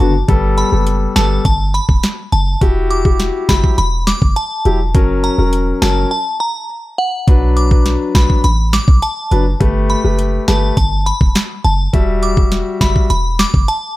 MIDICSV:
0, 0, Header, 1, 5, 480
1, 0, Start_track
1, 0, Tempo, 582524
1, 236, Time_signature, 4, 2, 24, 8
1, 11508, End_track
2, 0, Start_track
2, 0, Title_t, "Synth bell"
2, 0, Program_c, 0, 98
2, 0, Note_on_c, 0, 81, 82
2, 94, Note_off_c, 0, 81, 0
2, 475, Note_on_c, 0, 83, 70
2, 581, Note_off_c, 0, 83, 0
2, 954, Note_on_c, 0, 81, 77
2, 1060, Note_off_c, 0, 81, 0
2, 1196, Note_on_c, 0, 81, 83
2, 1301, Note_off_c, 0, 81, 0
2, 1435, Note_on_c, 0, 83, 83
2, 1541, Note_off_c, 0, 83, 0
2, 1915, Note_on_c, 0, 81, 73
2, 2021, Note_off_c, 0, 81, 0
2, 2394, Note_on_c, 0, 86, 69
2, 2500, Note_off_c, 0, 86, 0
2, 2874, Note_on_c, 0, 83, 80
2, 2980, Note_off_c, 0, 83, 0
2, 3115, Note_on_c, 0, 83, 86
2, 3221, Note_off_c, 0, 83, 0
2, 3355, Note_on_c, 0, 86, 86
2, 3461, Note_off_c, 0, 86, 0
2, 3595, Note_on_c, 0, 81, 81
2, 3934, Note_off_c, 0, 81, 0
2, 4315, Note_on_c, 0, 82, 71
2, 4421, Note_off_c, 0, 82, 0
2, 4795, Note_on_c, 0, 81, 77
2, 4901, Note_off_c, 0, 81, 0
2, 5035, Note_on_c, 0, 81, 82
2, 5141, Note_off_c, 0, 81, 0
2, 5275, Note_on_c, 0, 82, 88
2, 5381, Note_off_c, 0, 82, 0
2, 5754, Note_on_c, 0, 78, 74
2, 5860, Note_off_c, 0, 78, 0
2, 6234, Note_on_c, 0, 86, 72
2, 6340, Note_off_c, 0, 86, 0
2, 6716, Note_on_c, 0, 83, 78
2, 6821, Note_off_c, 0, 83, 0
2, 6956, Note_on_c, 0, 83, 84
2, 7061, Note_off_c, 0, 83, 0
2, 7196, Note_on_c, 0, 86, 88
2, 7301, Note_off_c, 0, 86, 0
2, 7436, Note_on_c, 0, 81, 82
2, 7774, Note_off_c, 0, 81, 0
2, 8157, Note_on_c, 0, 83, 71
2, 8262, Note_off_c, 0, 83, 0
2, 8636, Note_on_c, 0, 81, 76
2, 8741, Note_off_c, 0, 81, 0
2, 8876, Note_on_c, 0, 81, 84
2, 8981, Note_off_c, 0, 81, 0
2, 9116, Note_on_c, 0, 83, 89
2, 9221, Note_off_c, 0, 83, 0
2, 9595, Note_on_c, 0, 81, 75
2, 9701, Note_off_c, 0, 81, 0
2, 10076, Note_on_c, 0, 86, 72
2, 10181, Note_off_c, 0, 86, 0
2, 10556, Note_on_c, 0, 83, 77
2, 10661, Note_off_c, 0, 83, 0
2, 10795, Note_on_c, 0, 83, 87
2, 10901, Note_off_c, 0, 83, 0
2, 11036, Note_on_c, 0, 86, 90
2, 11141, Note_off_c, 0, 86, 0
2, 11275, Note_on_c, 0, 81, 82
2, 11508, Note_off_c, 0, 81, 0
2, 11508, End_track
3, 0, Start_track
3, 0, Title_t, "Grand piano"
3, 0, Program_c, 1, 0
3, 0, Note_on_c, 1, 50, 77
3, 0, Note_on_c, 1, 59, 69
3, 0, Note_on_c, 1, 66, 84
3, 95, Note_off_c, 1, 50, 0
3, 96, Note_off_c, 1, 59, 0
3, 98, Note_off_c, 1, 66, 0
3, 233, Note_on_c, 1, 55, 99
3, 236, Note_on_c, 1, 59, 86
3, 238, Note_on_c, 1, 69, 110
3, 566, Note_off_c, 1, 55, 0
3, 567, Note_off_c, 1, 59, 0
3, 568, Note_off_c, 1, 69, 0
3, 594, Note_on_c, 1, 55, 76
3, 596, Note_on_c, 1, 59, 72
3, 598, Note_on_c, 1, 69, 84
3, 926, Note_off_c, 1, 55, 0
3, 927, Note_off_c, 1, 59, 0
3, 928, Note_off_c, 1, 69, 0
3, 954, Note_on_c, 1, 55, 78
3, 956, Note_on_c, 1, 59, 73
3, 958, Note_on_c, 1, 69, 89
3, 1175, Note_off_c, 1, 55, 0
3, 1176, Note_off_c, 1, 59, 0
3, 1178, Note_off_c, 1, 69, 0
3, 2152, Note_on_c, 1, 66, 97
3, 2155, Note_on_c, 1, 64, 84
3, 2158, Note_on_c, 1, 67, 102
3, 2485, Note_off_c, 1, 66, 0
3, 2486, Note_off_c, 1, 64, 0
3, 2488, Note_off_c, 1, 67, 0
3, 2513, Note_on_c, 1, 66, 80
3, 2515, Note_on_c, 1, 64, 71
3, 2518, Note_on_c, 1, 67, 85
3, 2845, Note_off_c, 1, 66, 0
3, 2846, Note_off_c, 1, 64, 0
3, 2848, Note_off_c, 1, 67, 0
3, 2873, Note_on_c, 1, 54, 77
3, 2876, Note_on_c, 1, 64, 74
3, 2878, Note_on_c, 1, 67, 88
3, 3095, Note_off_c, 1, 54, 0
3, 3096, Note_off_c, 1, 64, 0
3, 3097, Note_off_c, 1, 67, 0
3, 3834, Note_on_c, 1, 54, 75
3, 3836, Note_on_c, 1, 64, 70
3, 3838, Note_on_c, 1, 67, 86
3, 3935, Note_off_c, 1, 54, 0
3, 3936, Note_off_c, 1, 64, 0
3, 3937, Note_off_c, 1, 67, 0
3, 4074, Note_on_c, 1, 54, 94
3, 4077, Note_on_c, 1, 61, 86
3, 4079, Note_on_c, 1, 70, 103
3, 4406, Note_off_c, 1, 54, 0
3, 4407, Note_off_c, 1, 61, 0
3, 4408, Note_off_c, 1, 70, 0
3, 4433, Note_on_c, 1, 54, 76
3, 4436, Note_on_c, 1, 61, 71
3, 4438, Note_on_c, 1, 70, 83
3, 4766, Note_off_c, 1, 54, 0
3, 4767, Note_off_c, 1, 61, 0
3, 4768, Note_off_c, 1, 70, 0
3, 4793, Note_on_c, 1, 54, 83
3, 4796, Note_on_c, 1, 61, 72
3, 4798, Note_on_c, 1, 70, 89
3, 5015, Note_off_c, 1, 54, 0
3, 5016, Note_off_c, 1, 61, 0
3, 5018, Note_off_c, 1, 70, 0
3, 5993, Note_on_c, 1, 54, 94
3, 5995, Note_on_c, 1, 62, 87
3, 5998, Note_on_c, 1, 71, 103
3, 6326, Note_off_c, 1, 54, 0
3, 6327, Note_off_c, 1, 62, 0
3, 6328, Note_off_c, 1, 71, 0
3, 6354, Note_on_c, 1, 54, 76
3, 6356, Note_on_c, 1, 62, 69
3, 6358, Note_on_c, 1, 71, 87
3, 6686, Note_off_c, 1, 54, 0
3, 6687, Note_off_c, 1, 62, 0
3, 6688, Note_off_c, 1, 71, 0
3, 6713, Note_on_c, 1, 54, 80
3, 6715, Note_on_c, 1, 62, 72
3, 6718, Note_on_c, 1, 71, 87
3, 6935, Note_off_c, 1, 54, 0
3, 6936, Note_off_c, 1, 62, 0
3, 6937, Note_off_c, 1, 71, 0
3, 7672, Note_on_c, 1, 54, 75
3, 7675, Note_on_c, 1, 62, 71
3, 7678, Note_on_c, 1, 71, 85
3, 7774, Note_off_c, 1, 54, 0
3, 7776, Note_off_c, 1, 62, 0
3, 7777, Note_off_c, 1, 71, 0
3, 7913, Note_on_c, 1, 57, 99
3, 7915, Note_on_c, 1, 67, 89
3, 7918, Note_on_c, 1, 71, 100
3, 8245, Note_off_c, 1, 57, 0
3, 8246, Note_off_c, 1, 67, 0
3, 8248, Note_off_c, 1, 71, 0
3, 8273, Note_on_c, 1, 57, 75
3, 8275, Note_on_c, 1, 67, 72
3, 8277, Note_on_c, 1, 71, 85
3, 8605, Note_off_c, 1, 57, 0
3, 8607, Note_off_c, 1, 67, 0
3, 8608, Note_off_c, 1, 71, 0
3, 8633, Note_on_c, 1, 57, 76
3, 8635, Note_on_c, 1, 67, 75
3, 8638, Note_on_c, 1, 71, 91
3, 8855, Note_off_c, 1, 57, 0
3, 8856, Note_off_c, 1, 67, 0
3, 8858, Note_off_c, 1, 71, 0
3, 9833, Note_on_c, 1, 55, 98
3, 9835, Note_on_c, 1, 66, 86
3, 9837, Note_on_c, 1, 76, 107
3, 10165, Note_off_c, 1, 55, 0
3, 10166, Note_off_c, 1, 66, 0
3, 10168, Note_off_c, 1, 76, 0
3, 10193, Note_on_c, 1, 55, 79
3, 10196, Note_on_c, 1, 66, 73
3, 10526, Note_off_c, 1, 55, 0
3, 10527, Note_off_c, 1, 66, 0
3, 10553, Note_on_c, 1, 55, 78
3, 10555, Note_on_c, 1, 66, 75
3, 10558, Note_on_c, 1, 76, 91
3, 10775, Note_off_c, 1, 55, 0
3, 10776, Note_off_c, 1, 66, 0
3, 10777, Note_off_c, 1, 76, 0
3, 11508, End_track
4, 0, Start_track
4, 0, Title_t, "808-style bass"
4, 0, Program_c, 2, 38
4, 0, Note_on_c, 2, 30, 99
4, 188, Note_off_c, 2, 30, 0
4, 236, Note_on_c, 2, 31, 113
4, 524, Note_off_c, 2, 31, 0
4, 595, Note_on_c, 2, 30, 89
4, 884, Note_off_c, 2, 30, 0
4, 955, Note_on_c, 2, 31, 88
4, 1148, Note_off_c, 2, 31, 0
4, 1195, Note_on_c, 2, 31, 108
4, 1483, Note_off_c, 2, 31, 0
4, 1556, Note_on_c, 2, 28, 92
4, 1652, Note_off_c, 2, 28, 0
4, 1915, Note_on_c, 2, 30, 101
4, 2107, Note_off_c, 2, 30, 0
4, 2155, Note_on_c, 2, 28, 108
4, 2725, Note_off_c, 2, 28, 0
4, 2875, Note_on_c, 2, 30, 92
4, 2971, Note_off_c, 2, 30, 0
4, 3115, Note_on_c, 2, 28, 99
4, 3404, Note_off_c, 2, 28, 0
4, 3476, Note_on_c, 2, 30, 91
4, 3572, Note_off_c, 2, 30, 0
4, 3835, Note_on_c, 2, 28, 102
4, 4076, Note_on_c, 2, 30, 102
4, 4089, Note_off_c, 2, 28, 0
4, 4364, Note_off_c, 2, 30, 0
4, 4436, Note_on_c, 2, 28, 92
4, 4724, Note_off_c, 2, 28, 0
4, 4795, Note_on_c, 2, 30, 96
4, 4988, Note_off_c, 2, 30, 0
4, 5996, Note_on_c, 2, 35, 106
4, 6566, Note_off_c, 2, 35, 0
4, 6715, Note_on_c, 2, 35, 87
4, 6811, Note_off_c, 2, 35, 0
4, 6956, Note_on_c, 2, 33, 98
4, 7244, Note_off_c, 2, 33, 0
4, 7316, Note_on_c, 2, 35, 95
4, 7412, Note_off_c, 2, 35, 0
4, 7675, Note_on_c, 2, 30, 102
4, 7868, Note_off_c, 2, 30, 0
4, 7916, Note_on_c, 2, 31, 115
4, 8204, Note_off_c, 2, 31, 0
4, 8275, Note_on_c, 2, 30, 84
4, 8564, Note_off_c, 2, 30, 0
4, 8635, Note_on_c, 2, 31, 89
4, 8828, Note_off_c, 2, 31, 0
4, 8875, Note_on_c, 2, 31, 106
4, 9163, Note_off_c, 2, 31, 0
4, 9236, Note_on_c, 2, 28, 92
4, 9332, Note_off_c, 2, 28, 0
4, 9596, Note_on_c, 2, 30, 103
4, 9788, Note_off_c, 2, 30, 0
4, 9836, Note_on_c, 2, 28, 109
4, 10405, Note_off_c, 2, 28, 0
4, 10554, Note_on_c, 2, 30, 89
4, 10651, Note_off_c, 2, 30, 0
4, 10795, Note_on_c, 2, 28, 96
4, 11083, Note_off_c, 2, 28, 0
4, 11156, Note_on_c, 2, 30, 90
4, 11252, Note_off_c, 2, 30, 0
4, 11508, End_track
5, 0, Start_track
5, 0, Title_t, "Drums"
5, 235, Note_on_c, 9, 42, 68
5, 236, Note_on_c, 9, 36, 112
5, 317, Note_off_c, 9, 42, 0
5, 318, Note_off_c, 9, 36, 0
5, 474, Note_on_c, 9, 42, 54
5, 557, Note_off_c, 9, 42, 0
5, 714, Note_on_c, 9, 42, 68
5, 796, Note_off_c, 9, 42, 0
5, 956, Note_on_c, 9, 38, 127
5, 957, Note_on_c, 9, 42, 53
5, 1038, Note_off_c, 9, 38, 0
5, 1040, Note_off_c, 9, 42, 0
5, 1195, Note_on_c, 9, 36, 104
5, 1195, Note_on_c, 9, 42, 77
5, 1277, Note_off_c, 9, 36, 0
5, 1277, Note_off_c, 9, 42, 0
5, 1438, Note_on_c, 9, 42, 62
5, 1521, Note_off_c, 9, 42, 0
5, 1556, Note_on_c, 9, 36, 95
5, 1638, Note_off_c, 9, 36, 0
5, 1675, Note_on_c, 9, 42, 64
5, 1678, Note_on_c, 9, 38, 112
5, 1757, Note_off_c, 9, 42, 0
5, 1760, Note_off_c, 9, 38, 0
5, 1915, Note_on_c, 9, 42, 50
5, 1997, Note_off_c, 9, 42, 0
5, 2154, Note_on_c, 9, 42, 68
5, 2155, Note_on_c, 9, 36, 116
5, 2237, Note_off_c, 9, 42, 0
5, 2238, Note_off_c, 9, 36, 0
5, 2394, Note_on_c, 9, 42, 57
5, 2476, Note_off_c, 9, 42, 0
5, 2514, Note_on_c, 9, 36, 93
5, 2597, Note_off_c, 9, 36, 0
5, 2633, Note_on_c, 9, 42, 69
5, 2634, Note_on_c, 9, 38, 68
5, 2715, Note_off_c, 9, 42, 0
5, 2716, Note_off_c, 9, 38, 0
5, 2874, Note_on_c, 9, 36, 94
5, 2875, Note_on_c, 9, 38, 121
5, 2877, Note_on_c, 9, 42, 54
5, 2957, Note_off_c, 9, 36, 0
5, 2957, Note_off_c, 9, 38, 0
5, 2959, Note_off_c, 9, 42, 0
5, 2997, Note_on_c, 9, 36, 93
5, 3079, Note_off_c, 9, 36, 0
5, 3115, Note_on_c, 9, 42, 76
5, 3197, Note_off_c, 9, 42, 0
5, 3354, Note_on_c, 9, 38, 113
5, 3358, Note_on_c, 9, 42, 60
5, 3437, Note_off_c, 9, 38, 0
5, 3440, Note_off_c, 9, 42, 0
5, 3476, Note_on_c, 9, 36, 100
5, 3558, Note_off_c, 9, 36, 0
5, 3595, Note_on_c, 9, 42, 65
5, 3677, Note_off_c, 9, 42, 0
5, 3835, Note_on_c, 9, 42, 52
5, 3917, Note_off_c, 9, 42, 0
5, 4075, Note_on_c, 9, 42, 68
5, 4076, Note_on_c, 9, 36, 114
5, 4157, Note_off_c, 9, 42, 0
5, 4158, Note_off_c, 9, 36, 0
5, 4315, Note_on_c, 9, 42, 57
5, 4397, Note_off_c, 9, 42, 0
5, 4554, Note_on_c, 9, 42, 69
5, 4637, Note_off_c, 9, 42, 0
5, 4796, Note_on_c, 9, 38, 123
5, 4798, Note_on_c, 9, 42, 55
5, 4878, Note_off_c, 9, 38, 0
5, 4880, Note_off_c, 9, 42, 0
5, 5996, Note_on_c, 9, 36, 116
5, 5996, Note_on_c, 9, 42, 66
5, 6078, Note_off_c, 9, 36, 0
5, 6078, Note_off_c, 9, 42, 0
5, 6235, Note_on_c, 9, 42, 56
5, 6317, Note_off_c, 9, 42, 0
5, 6355, Note_on_c, 9, 36, 95
5, 6437, Note_off_c, 9, 36, 0
5, 6473, Note_on_c, 9, 42, 70
5, 6474, Note_on_c, 9, 38, 66
5, 6556, Note_off_c, 9, 42, 0
5, 6557, Note_off_c, 9, 38, 0
5, 6714, Note_on_c, 9, 36, 91
5, 6715, Note_on_c, 9, 38, 125
5, 6717, Note_on_c, 9, 42, 55
5, 6797, Note_off_c, 9, 36, 0
5, 6797, Note_off_c, 9, 38, 0
5, 6799, Note_off_c, 9, 42, 0
5, 6837, Note_on_c, 9, 36, 89
5, 6920, Note_off_c, 9, 36, 0
5, 6954, Note_on_c, 9, 42, 80
5, 7037, Note_off_c, 9, 42, 0
5, 7195, Note_on_c, 9, 38, 116
5, 7198, Note_on_c, 9, 42, 65
5, 7277, Note_off_c, 9, 38, 0
5, 7280, Note_off_c, 9, 42, 0
5, 7316, Note_on_c, 9, 36, 99
5, 7398, Note_off_c, 9, 36, 0
5, 7435, Note_on_c, 9, 42, 65
5, 7518, Note_off_c, 9, 42, 0
5, 7675, Note_on_c, 9, 42, 51
5, 7758, Note_off_c, 9, 42, 0
5, 7915, Note_on_c, 9, 42, 67
5, 7916, Note_on_c, 9, 36, 114
5, 7998, Note_off_c, 9, 36, 0
5, 7998, Note_off_c, 9, 42, 0
5, 8154, Note_on_c, 9, 42, 59
5, 8237, Note_off_c, 9, 42, 0
5, 8394, Note_on_c, 9, 42, 69
5, 8476, Note_off_c, 9, 42, 0
5, 8635, Note_on_c, 9, 38, 126
5, 8637, Note_on_c, 9, 42, 57
5, 8717, Note_off_c, 9, 38, 0
5, 8719, Note_off_c, 9, 42, 0
5, 8875, Note_on_c, 9, 36, 100
5, 8875, Note_on_c, 9, 42, 78
5, 8957, Note_off_c, 9, 36, 0
5, 8957, Note_off_c, 9, 42, 0
5, 9118, Note_on_c, 9, 42, 63
5, 9200, Note_off_c, 9, 42, 0
5, 9236, Note_on_c, 9, 36, 99
5, 9318, Note_off_c, 9, 36, 0
5, 9355, Note_on_c, 9, 42, 68
5, 9357, Note_on_c, 9, 38, 117
5, 9437, Note_off_c, 9, 42, 0
5, 9440, Note_off_c, 9, 38, 0
5, 9595, Note_on_c, 9, 42, 52
5, 9677, Note_off_c, 9, 42, 0
5, 9835, Note_on_c, 9, 42, 69
5, 9836, Note_on_c, 9, 36, 112
5, 9917, Note_off_c, 9, 42, 0
5, 9918, Note_off_c, 9, 36, 0
5, 10074, Note_on_c, 9, 42, 59
5, 10157, Note_off_c, 9, 42, 0
5, 10194, Note_on_c, 9, 36, 92
5, 10277, Note_off_c, 9, 36, 0
5, 10314, Note_on_c, 9, 38, 67
5, 10314, Note_on_c, 9, 42, 70
5, 10396, Note_off_c, 9, 42, 0
5, 10397, Note_off_c, 9, 38, 0
5, 10555, Note_on_c, 9, 36, 97
5, 10556, Note_on_c, 9, 38, 120
5, 10558, Note_on_c, 9, 42, 54
5, 10637, Note_off_c, 9, 36, 0
5, 10638, Note_off_c, 9, 38, 0
5, 10640, Note_off_c, 9, 42, 0
5, 10677, Note_on_c, 9, 36, 91
5, 10760, Note_off_c, 9, 36, 0
5, 10795, Note_on_c, 9, 42, 78
5, 10877, Note_off_c, 9, 42, 0
5, 11035, Note_on_c, 9, 38, 117
5, 11038, Note_on_c, 9, 42, 61
5, 11117, Note_off_c, 9, 38, 0
5, 11121, Note_off_c, 9, 42, 0
5, 11156, Note_on_c, 9, 36, 99
5, 11238, Note_off_c, 9, 36, 0
5, 11275, Note_on_c, 9, 42, 66
5, 11358, Note_off_c, 9, 42, 0
5, 11508, End_track
0, 0, End_of_file